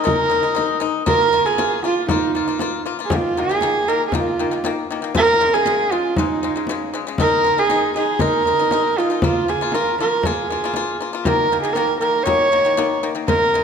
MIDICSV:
0, 0, Header, 1, 4, 480
1, 0, Start_track
1, 0, Tempo, 508906
1, 1020, Time_signature, 4, 2, 24, 8
1, 12862, End_track
2, 0, Start_track
2, 0, Title_t, "Horsehead fiddle"
2, 0, Program_c, 0, 110
2, 34, Note_on_c, 0, 70, 96
2, 730, Note_off_c, 0, 70, 0
2, 1013, Note_on_c, 0, 70, 101
2, 1379, Note_on_c, 0, 68, 86
2, 1393, Note_off_c, 0, 70, 0
2, 1736, Note_off_c, 0, 68, 0
2, 1741, Note_on_c, 0, 65, 77
2, 1965, Note_off_c, 0, 65, 0
2, 1973, Note_on_c, 0, 63, 71
2, 2660, Note_off_c, 0, 63, 0
2, 2877, Note_on_c, 0, 68, 66
2, 2979, Note_on_c, 0, 65, 81
2, 2993, Note_off_c, 0, 68, 0
2, 3201, Note_on_c, 0, 68, 95
2, 3215, Note_off_c, 0, 65, 0
2, 3662, Note_on_c, 0, 70, 93
2, 3676, Note_off_c, 0, 68, 0
2, 3836, Note_off_c, 0, 70, 0
2, 3846, Note_on_c, 0, 68, 58
2, 3909, Note_on_c, 0, 65, 77
2, 3923, Note_off_c, 0, 68, 0
2, 4387, Note_off_c, 0, 65, 0
2, 4879, Note_on_c, 0, 70, 113
2, 5221, Note_on_c, 0, 68, 98
2, 5235, Note_off_c, 0, 70, 0
2, 5584, Note_on_c, 0, 65, 84
2, 5599, Note_off_c, 0, 68, 0
2, 5816, Note_on_c, 0, 63, 72
2, 5830, Note_off_c, 0, 65, 0
2, 6540, Note_off_c, 0, 63, 0
2, 6792, Note_on_c, 0, 70, 101
2, 7158, Note_on_c, 0, 68, 92
2, 7172, Note_off_c, 0, 70, 0
2, 7502, Note_off_c, 0, 68, 0
2, 7507, Note_on_c, 0, 68, 85
2, 7739, Note_on_c, 0, 70, 95
2, 7753, Note_off_c, 0, 68, 0
2, 8467, Note_on_c, 0, 65, 77
2, 8481, Note_off_c, 0, 70, 0
2, 8705, Note_off_c, 0, 65, 0
2, 8718, Note_on_c, 0, 65, 84
2, 8950, Note_on_c, 0, 68, 80
2, 8964, Note_off_c, 0, 65, 0
2, 9186, Note_on_c, 0, 70, 91
2, 9200, Note_off_c, 0, 68, 0
2, 9424, Note_off_c, 0, 70, 0
2, 9434, Note_on_c, 0, 70, 81
2, 9675, Note_on_c, 0, 68, 76
2, 9689, Note_off_c, 0, 70, 0
2, 10387, Note_off_c, 0, 68, 0
2, 10616, Note_on_c, 0, 70, 83
2, 10952, Note_off_c, 0, 70, 0
2, 10959, Note_on_c, 0, 68, 69
2, 11062, Note_on_c, 0, 70, 82
2, 11076, Note_off_c, 0, 68, 0
2, 11307, Note_off_c, 0, 70, 0
2, 11312, Note_on_c, 0, 70, 84
2, 11539, Note_on_c, 0, 73, 102
2, 11553, Note_off_c, 0, 70, 0
2, 12277, Note_off_c, 0, 73, 0
2, 12525, Note_on_c, 0, 70, 103
2, 12862, Note_off_c, 0, 70, 0
2, 12862, End_track
3, 0, Start_track
3, 0, Title_t, "Pipa"
3, 0, Program_c, 1, 105
3, 36, Note_on_c, 1, 56, 83
3, 47, Note_on_c, 1, 63, 88
3, 239, Note_off_c, 1, 56, 0
3, 245, Note_off_c, 1, 63, 0
3, 279, Note_on_c, 1, 56, 66
3, 294, Note_on_c, 1, 63, 74
3, 385, Note_off_c, 1, 56, 0
3, 392, Note_off_c, 1, 63, 0
3, 406, Note_on_c, 1, 56, 62
3, 416, Note_on_c, 1, 63, 60
3, 505, Note_off_c, 1, 56, 0
3, 514, Note_off_c, 1, 63, 0
3, 516, Note_on_c, 1, 56, 78
3, 530, Note_on_c, 1, 63, 92
3, 720, Note_off_c, 1, 56, 0
3, 727, Note_off_c, 1, 63, 0
3, 756, Note_on_c, 1, 56, 78
3, 767, Note_on_c, 1, 63, 84
3, 960, Note_off_c, 1, 56, 0
3, 965, Note_off_c, 1, 63, 0
3, 1002, Note_on_c, 1, 58, 90
3, 1013, Note_on_c, 1, 65, 86
3, 1203, Note_off_c, 1, 58, 0
3, 1209, Note_off_c, 1, 65, 0
3, 1252, Note_on_c, 1, 58, 64
3, 1263, Note_on_c, 1, 65, 64
3, 1352, Note_off_c, 1, 58, 0
3, 1358, Note_off_c, 1, 65, 0
3, 1376, Note_on_c, 1, 58, 60
3, 1390, Note_on_c, 1, 65, 64
3, 1474, Note_off_c, 1, 58, 0
3, 1481, Note_off_c, 1, 65, 0
3, 1492, Note_on_c, 1, 58, 81
3, 1498, Note_on_c, 1, 65, 85
3, 1688, Note_off_c, 1, 58, 0
3, 1692, Note_off_c, 1, 65, 0
3, 1735, Note_on_c, 1, 58, 69
3, 1744, Note_on_c, 1, 65, 74
3, 1930, Note_off_c, 1, 58, 0
3, 1935, Note_off_c, 1, 65, 0
3, 1974, Note_on_c, 1, 58, 87
3, 1988, Note_on_c, 1, 65, 85
3, 2170, Note_off_c, 1, 58, 0
3, 2177, Note_off_c, 1, 65, 0
3, 2215, Note_on_c, 1, 58, 61
3, 2229, Note_on_c, 1, 65, 71
3, 2314, Note_off_c, 1, 58, 0
3, 2321, Note_off_c, 1, 65, 0
3, 2335, Note_on_c, 1, 58, 68
3, 2345, Note_on_c, 1, 65, 74
3, 2434, Note_off_c, 1, 58, 0
3, 2439, Note_off_c, 1, 65, 0
3, 2456, Note_on_c, 1, 58, 88
3, 2467, Note_on_c, 1, 65, 93
3, 2651, Note_off_c, 1, 58, 0
3, 2656, Note_off_c, 1, 65, 0
3, 2693, Note_on_c, 1, 58, 67
3, 2700, Note_on_c, 1, 65, 79
3, 2794, Note_off_c, 1, 58, 0
3, 2797, Note_off_c, 1, 65, 0
3, 2819, Note_on_c, 1, 58, 62
3, 2831, Note_on_c, 1, 65, 74
3, 2917, Note_off_c, 1, 58, 0
3, 2923, Note_off_c, 1, 65, 0
3, 2938, Note_on_c, 1, 51, 87
3, 2948, Note_on_c, 1, 58, 93
3, 3132, Note_off_c, 1, 51, 0
3, 3137, Note_off_c, 1, 58, 0
3, 3181, Note_on_c, 1, 51, 64
3, 3191, Note_on_c, 1, 58, 71
3, 3278, Note_off_c, 1, 51, 0
3, 3283, Note_off_c, 1, 58, 0
3, 3295, Note_on_c, 1, 51, 59
3, 3309, Note_on_c, 1, 58, 76
3, 3395, Note_off_c, 1, 51, 0
3, 3402, Note_off_c, 1, 58, 0
3, 3416, Note_on_c, 1, 51, 86
3, 3425, Note_on_c, 1, 58, 90
3, 3611, Note_off_c, 1, 51, 0
3, 3616, Note_off_c, 1, 58, 0
3, 3662, Note_on_c, 1, 51, 65
3, 3673, Note_on_c, 1, 58, 75
3, 3854, Note_off_c, 1, 51, 0
3, 3860, Note_off_c, 1, 58, 0
3, 3901, Note_on_c, 1, 51, 83
3, 3912, Note_on_c, 1, 58, 97
3, 4094, Note_off_c, 1, 51, 0
3, 4100, Note_off_c, 1, 58, 0
3, 4144, Note_on_c, 1, 51, 70
3, 4152, Note_on_c, 1, 58, 75
3, 4240, Note_off_c, 1, 51, 0
3, 4244, Note_off_c, 1, 58, 0
3, 4257, Note_on_c, 1, 51, 65
3, 4271, Note_on_c, 1, 58, 70
3, 4357, Note_off_c, 1, 51, 0
3, 4364, Note_off_c, 1, 58, 0
3, 4382, Note_on_c, 1, 51, 89
3, 4397, Note_on_c, 1, 58, 99
3, 4575, Note_off_c, 1, 51, 0
3, 4582, Note_off_c, 1, 58, 0
3, 4627, Note_on_c, 1, 51, 75
3, 4640, Note_on_c, 1, 58, 77
3, 4721, Note_off_c, 1, 51, 0
3, 4728, Note_off_c, 1, 58, 0
3, 4735, Note_on_c, 1, 51, 65
3, 4753, Note_on_c, 1, 58, 75
3, 4836, Note_off_c, 1, 51, 0
3, 4844, Note_off_c, 1, 58, 0
3, 4854, Note_on_c, 1, 49, 87
3, 4862, Note_on_c, 1, 56, 95
3, 5051, Note_off_c, 1, 49, 0
3, 5055, Note_off_c, 1, 56, 0
3, 5100, Note_on_c, 1, 49, 67
3, 5106, Note_on_c, 1, 56, 77
3, 5198, Note_off_c, 1, 49, 0
3, 5200, Note_off_c, 1, 56, 0
3, 5224, Note_on_c, 1, 49, 68
3, 5235, Note_on_c, 1, 56, 71
3, 5320, Note_off_c, 1, 49, 0
3, 5326, Note_off_c, 1, 56, 0
3, 5338, Note_on_c, 1, 49, 89
3, 5348, Note_on_c, 1, 56, 93
3, 5533, Note_off_c, 1, 49, 0
3, 5538, Note_off_c, 1, 56, 0
3, 5581, Note_on_c, 1, 49, 64
3, 5586, Note_on_c, 1, 56, 75
3, 5775, Note_off_c, 1, 49, 0
3, 5777, Note_off_c, 1, 56, 0
3, 5831, Note_on_c, 1, 49, 84
3, 5839, Note_on_c, 1, 56, 99
3, 6020, Note_off_c, 1, 49, 0
3, 6024, Note_off_c, 1, 56, 0
3, 6064, Note_on_c, 1, 49, 65
3, 6077, Note_on_c, 1, 56, 77
3, 6160, Note_off_c, 1, 49, 0
3, 6167, Note_off_c, 1, 56, 0
3, 6184, Note_on_c, 1, 49, 63
3, 6196, Note_on_c, 1, 56, 73
3, 6280, Note_off_c, 1, 49, 0
3, 6286, Note_off_c, 1, 56, 0
3, 6312, Note_on_c, 1, 49, 93
3, 6327, Note_on_c, 1, 56, 90
3, 6500, Note_off_c, 1, 49, 0
3, 6508, Note_off_c, 1, 56, 0
3, 6542, Note_on_c, 1, 49, 72
3, 6554, Note_on_c, 1, 56, 83
3, 6639, Note_off_c, 1, 49, 0
3, 6646, Note_off_c, 1, 56, 0
3, 6667, Note_on_c, 1, 49, 65
3, 6681, Note_on_c, 1, 56, 78
3, 6762, Note_off_c, 1, 49, 0
3, 6769, Note_off_c, 1, 56, 0
3, 6788, Note_on_c, 1, 56, 87
3, 6796, Note_on_c, 1, 63, 93
3, 6978, Note_off_c, 1, 56, 0
3, 6982, Note_off_c, 1, 63, 0
3, 7021, Note_on_c, 1, 56, 68
3, 7040, Note_on_c, 1, 63, 64
3, 7119, Note_off_c, 1, 56, 0
3, 7128, Note_off_c, 1, 63, 0
3, 7149, Note_on_c, 1, 56, 57
3, 7156, Note_on_c, 1, 63, 66
3, 7243, Note_off_c, 1, 56, 0
3, 7246, Note_off_c, 1, 63, 0
3, 7260, Note_on_c, 1, 56, 84
3, 7271, Note_on_c, 1, 63, 88
3, 7454, Note_off_c, 1, 56, 0
3, 7460, Note_off_c, 1, 63, 0
3, 7506, Note_on_c, 1, 56, 70
3, 7517, Note_on_c, 1, 63, 67
3, 7697, Note_off_c, 1, 56, 0
3, 7702, Note_off_c, 1, 63, 0
3, 7734, Note_on_c, 1, 56, 85
3, 7749, Note_on_c, 1, 63, 100
3, 7931, Note_off_c, 1, 56, 0
3, 7938, Note_off_c, 1, 63, 0
3, 7989, Note_on_c, 1, 56, 64
3, 7998, Note_on_c, 1, 63, 67
3, 8082, Note_off_c, 1, 56, 0
3, 8087, Note_off_c, 1, 63, 0
3, 8106, Note_on_c, 1, 56, 61
3, 8117, Note_on_c, 1, 63, 66
3, 8201, Note_off_c, 1, 56, 0
3, 8206, Note_off_c, 1, 63, 0
3, 8226, Note_on_c, 1, 56, 87
3, 8238, Note_on_c, 1, 63, 86
3, 8417, Note_off_c, 1, 56, 0
3, 8423, Note_off_c, 1, 63, 0
3, 8474, Note_on_c, 1, 56, 56
3, 8485, Note_on_c, 1, 63, 66
3, 8564, Note_off_c, 1, 56, 0
3, 8570, Note_off_c, 1, 63, 0
3, 8583, Note_on_c, 1, 56, 66
3, 8595, Note_on_c, 1, 63, 70
3, 8679, Note_off_c, 1, 56, 0
3, 8685, Note_off_c, 1, 63, 0
3, 8712, Note_on_c, 1, 58, 79
3, 8718, Note_on_c, 1, 65, 85
3, 8900, Note_off_c, 1, 58, 0
3, 8902, Note_off_c, 1, 65, 0
3, 8945, Note_on_c, 1, 58, 65
3, 8954, Note_on_c, 1, 65, 68
3, 9040, Note_off_c, 1, 58, 0
3, 9044, Note_off_c, 1, 65, 0
3, 9066, Note_on_c, 1, 58, 63
3, 9076, Note_on_c, 1, 65, 73
3, 9160, Note_off_c, 1, 58, 0
3, 9165, Note_off_c, 1, 65, 0
3, 9190, Note_on_c, 1, 58, 73
3, 9197, Note_on_c, 1, 65, 88
3, 9378, Note_off_c, 1, 58, 0
3, 9382, Note_off_c, 1, 65, 0
3, 9436, Note_on_c, 1, 58, 66
3, 9444, Note_on_c, 1, 65, 67
3, 9621, Note_off_c, 1, 58, 0
3, 9625, Note_off_c, 1, 65, 0
3, 9672, Note_on_c, 1, 58, 79
3, 9683, Note_on_c, 1, 65, 100
3, 9858, Note_off_c, 1, 58, 0
3, 9864, Note_off_c, 1, 65, 0
3, 9908, Note_on_c, 1, 58, 63
3, 9923, Note_on_c, 1, 65, 69
3, 10000, Note_off_c, 1, 58, 0
3, 10008, Note_off_c, 1, 65, 0
3, 10034, Note_on_c, 1, 58, 69
3, 10048, Note_on_c, 1, 65, 78
3, 10123, Note_off_c, 1, 58, 0
3, 10130, Note_off_c, 1, 65, 0
3, 10148, Note_on_c, 1, 58, 87
3, 10154, Note_on_c, 1, 65, 96
3, 10336, Note_off_c, 1, 58, 0
3, 10339, Note_off_c, 1, 65, 0
3, 10380, Note_on_c, 1, 58, 69
3, 10393, Note_on_c, 1, 65, 77
3, 10476, Note_off_c, 1, 58, 0
3, 10483, Note_off_c, 1, 65, 0
3, 10498, Note_on_c, 1, 58, 65
3, 10512, Note_on_c, 1, 65, 69
3, 10595, Note_off_c, 1, 58, 0
3, 10602, Note_off_c, 1, 65, 0
3, 10619, Note_on_c, 1, 51, 83
3, 10629, Note_on_c, 1, 58, 94
3, 10811, Note_off_c, 1, 51, 0
3, 10816, Note_off_c, 1, 58, 0
3, 10867, Note_on_c, 1, 51, 62
3, 10875, Note_on_c, 1, 58, 68
3, 10959, Note_off_c, 1, 51, 0
3, 10963, Note_off_c, 1, 58, 0
3, 10975, Note_on_c, 1, 51, 66
3, 10985, Note_on_c, 1, 58, 70
3, 11073, Note_off_c, 1, 51, 0
3, 11078, Note_off_c, 1, 58, 0
3, 11091, Note_on_c, 1, 51, 81
3, 11103, Note_on_c, 1, 58, 92
3, 11287, Note_off_c, 1, 51, 0
3, 11292, Note_off_c, 1, 58, 0
3, 11327, Note_on_c, 1, 51, 62
3, 11339, Note_on_c, 1, 58, 75
3, 11524, Note_off_c, 1, 51, 0
3, 11530, Note_off_c, 1, 58, 0
3, 11559, Note_on_c, 1, 51, 85
3, 11574, Note_on_c, 1, 58, 95
3, 11760, Note_off_c, 1, 51, 0
3, 11767, Note_off_c, 1, 58, 0
3, 11808, Note_on_c, 1, 51, 61
3, 11817, Note_on_c, 1, 58, 77
3, 11908, Note_off_c, 1, 51, 0
3, 11913, Note_off_c, 1, 58, 0
3, 11930, Note_on_c, 1, 51, 64
3, 11942, Note_on_c, 1, 58, 69
3, 12029, Note_off_c, 1, 51, 0
3, 12035, Note_off_c, 1, 58, 0
3, 12048, Note_on_c, 1, 51, 88
3, 12058, Note_on_c, 1, 58, 101
3, 12244, Note_off_c, 1, 51, 0
3, 12249, Note_off_c, 1, 58, 0
3, 12291, Note_on_c, 1, 51, 74
3, 12295, Note_on_c, 1, 58, 80
3, 12389, Note_off_c, 1, 51, 0
3, 12391, Note_off_c, 1, 58, 0
3, 12400, Note_on_c, 1, 51, 67
3, 12409, Note_on_c, 1, 58, 73
3, 12504, Note_off_c, 1, 51, 0
3, 12508, Note_off_c, 1, 58, 0
3, 12526, Note_on_c, 1, 49, 91
3, 12536, Note_on_c, 1, 56, 86
3, 12722, Note_off_c, 1, 49, 0
3, 12727, Note_off_c, 1, 56, 0
3, 12772, Note_on_c, 1, 49, 65
3, 12783, Note_on_c, 1, 56, 78
3, 12862, Note_off_c, 1, 49, 0
3, 12862, Note_off_c, 1, 56, 0
3, 12862, End_track
4, 0, Start_track
4, 0, Title_t, "Frame drum"
4, 64, Note_on_c, 9, 64, 65
4, 158, Note_off_c, 9, 64, 0
4, 546, Note_on_c, 9, 64, 53
4, 641, Note_off_c, 9, 64, 0
4, 782, Note_on_c, 9, 64, 22
4, 876, Note_off_c, 9, 64, 0
4, 1007, Note_on_c, 9, 64, 77
4, 1101, Note_off_c, 9, 64, 0
4, 1368, Note_on_c, 9, 64, 25
4, 1463, Note_off_c, 9, 64, 0
4, 1495, Note_on_c, 9, 64, 60
4, 1589, Note_off_c, 9, 64, 0
4, 1724, Note_on_c, 9, 64, 23
4, 1818, Note_off_c, 9, 64, 0
4, 1967, Note_on_c, 9, 64, 72
4, 2061, Note_off_c, 9, 64, 0
4, 2331, Note_on_c, 9, 64, 26
4, 2426, Note_off_c, 9, 64, 0
4, 2447, Note_on_c, 9, 64, 56
4, 2541, Note_off_c, 9, 64, 0
4, 2925, Note_on_c, 9, 64, 78
4, 3019, Note_off_c, 9, 64, 0
4, 3289, Note_on_c, 9, 64, 25
4, 3383, Note_off_c, 9, 64, 0
4, 3404, Note_on_c, 9, 64, 57
4, 3498, Note_off_c, 9, 64, 0
4, 3649, Note_on_c, 9, 64, 24
4, 3743, Note_off_c, 9, 64, 0
4, 3886, Note_on_c, 9, 64, 62
4, 3980, Note_off_c, 9, 64, 0
4, 4256, Note_on_c, 9, 64, 24
4, 4351, Note_off_c, 9, 64, 0
4, 4375, Note_on_c, 9, 64, 58
4, 4470, Note_off_c, 9, 64, 0
4, 4854, Note_on_c, 9, 64, 70
4, 4948, Note_off_c, 9, 64, 0
4, 5216, Note_on_c, 9, 64, 24
4, 5311, Note_off_c, 9, 64, 0
4, 5335, Note_on_c, 9, 64, 59
4, 5429, Note_off_c, 9, 64, 0
4, 5576, Note_on_c, 9, 64, 22
4, 5671, Note_off_c, 9, 64, 0
4, 5814, Note_on_c, 9, 64, 66
4, 5909, Note_off_c, 9, 64, 0
4, 6176, Note_on_c, 9, 64, 20
4, 6270, Note_off_c, 9, 64, 0
4, 6290, Note_on_c, 9, 64, 54
4, 6384, Note_off_c, 9, 64, 0
4, 6774, Note_on_c, 9, 64, 70
4, 6868, Note_off_c, 9, 64, 0
4, 7138, Note_on_c, 9, 64, 25
4, 7232, Note_off_c, 9, 64, 0
4, 7257, Note_on_c, 9, 64, 56
4, 7351, Note_off_c, 9, 64, 0
4, 7499, Note_on_c, 9, 64, 23
4, 7593, Note_off_c, 9, 64, 0
4, 7728, Note_on_c, 9, 64, 68
4, 7822, Note_off_c, 9, 64, 0
4, 7974, Note_on_c, 9, 64, 49
4, 8068, Note_off_c, 9, 64, 0
4, 8099, Note_on_c, 9, 64, 23
4, 8193, Note_off_c, 9, 64, 0
4, 8216, Note_on_c, 9, 64, 62
4, 8310, Note_off_c, 9, 64, 0
4, 8696, Note_on_c, 9, 64, 78
4, 8791, Note_off_c, 9, 64, 0
4, 9060, Note_on_c, 9, 64, 25
4, 9155, Note_off_c, 9, 64, 0
4, 9168, Note_on_c, 9, 64, 59
4, 9263, Note_off_c, 9, 64, 0
4, 9426, Note_on_c, 9, 64, 24
4, 9520, Note_off_c, 9, 64, 0
4, 9651, Note_on_c, 9, 64, 66
4, 9745, Note_off_c, 9, 64, 0
4, 10025, Note_on_c, 9, 64, 22
4, 10120, Note_off_c, 9, 64, 0
4, 10127, Note_on_c, 9, 64, 55
4, 10221, Note_off_c, 9, 64, 0
4, 10613, Note_on_c, 9, 64, 72
4, 10708, Note_off_c, 9, 64, 0
4, 10973, Note_on_c, 9, 64, 23
4, 11067, Note_off_c, 9, 64, 0
4, 11086, Note_on_c, 9, 64, 57
4, 11180, Note_off_c, 9, 64, 0
4, 11335, Note_on_c, 9, 64, 21
4, 11429, Note_off_c, 9, 64, 0
4, 11571, Note_on_c, 9, 64, 63
4, 11665, Note_off_c, 9, 64, 0
4, 11933, Note_on_c, 9, 64, 21
4, 12027, Note_off_c, 9, 64, 0
4, 12053, Note_on_c, 9, 64, 55
4, 12148, Note_off_c, 9, 64, 0
4, 12526, Note_on_c, 9, 64, 71
4, 12621, Note_off_c, 9, 64, 0
4, 12862, End_track
0, 0, End_of_file